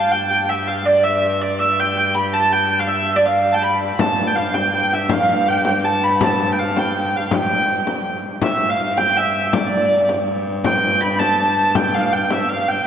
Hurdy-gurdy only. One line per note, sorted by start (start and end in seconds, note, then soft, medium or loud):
0.00 0.11 F5 medium
0.11 0.30 G5 medium
0.30 0.49 G5 medium
0.49 0.68 E5 medium
0.68 0.86 F5 medium
0.86 1.04 D5 medium
1.04 1.42 E5 medium
1.42 1.59 D5 medium
1.59 1.80 E5 medium
1.80 1.97 G5 loud
1.97 2.15 G5 medium
2.15 2.34 B5 loud
2.34 2.52 A5 medium
2.52 2.79 G5 medium
2.79 2.88 F5 medium
2.87 3.16 E5 medium
3.16 3.26 D5 medium
3.26 3.54 F5 medium
3.53 3.63 G5 medium
3.53 3.63 A5 medium
3.63 4.00 B5 medium
4.00 4.28 A5 loud
4.28 4.36 G5 medium
4.36 4.54 F5 medium
4.54 4.73 G5 medium
4.73 4.93 G5 medium
4.93 5.11 E5 medium
5.11 5.29 F5 medium
5.29 5.48 F5 medium
5.48 5.85 G5 medium
5.85 6.04 A5 medium
6.04 6.24 B5 medium
6.24 6.52 A5 medium
6.52 6.60 G5 medium
6.59 6.79 F5 medium
6.79 6.98 G5 medium
6.98 7.16 G5 medium
7.16 7.35 F5 medium
7.35 8.03 G5 medium
8.43 8.70 E5 medium
8.70 8.98 F5 medium
8.98 9.17 G5 medium
9.17 9.54 E5 medium
9.54 10.05 D5 medium
10.65 11.01 G5 loud
11.01 11.20 B5 loud
11.19 11.39 A5 medium
11.39 11.76 A5 medium
11.76 11.94 G5 loud
11.94 12.13 F5 medium
12.13 12.31 G5 medium
12.31 12.49 E5 medium
12.49 12.68 F5 medium
12.68 12.86 G5 medium